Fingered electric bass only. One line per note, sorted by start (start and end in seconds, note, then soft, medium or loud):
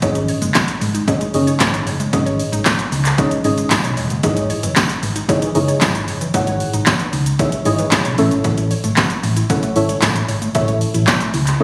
0.02 0.30 G#1 loud
0.42 0.51 F#1 loud
0.81 1.00 G#1 loud
1.34 1.52 F#1 loud
1.60 1.79 G#1 loud
1.87 2.05 F#1 medium
2.13 2.40 G#1 loud
2.52 2.62 G#1 medium
2.92 3.10 C#2 loud
3.44 3.63 G#1 medium
3.84 3.93 B1 medium
3.97 4.06 E1 medium
4.10 4.20 F#1 medium
4.24 4.51 G#1 loud
4.63 4.72 F#1 medium
5.03 5.21 G#1 loud
5.55 5.73 F#1 medium
5.82 6.08 G#1 medium
6.08 6.26 F#1 loud
6.34 6.61 G#1 loud
6.74 6.83 G#1 medium
7.13 7.31 C#2 loud
7.66 7.84 G#1 loud
8.05 8.14 B1 loud
8.18 8.27 A1 loud
8.31 8.40 G#1 medium
8.44 8.72 A1 loud
8.84 8.93 G#1 medium
9.23 9.42 A1 medium
9.76 9.94 G#1 medium
10.03 10.21 A1 medium
10.29 10.47 G#1 medium
10.55 10.82 A1 loud
10.95 11.04 A1 medium
11.34 11.52 C#2 medium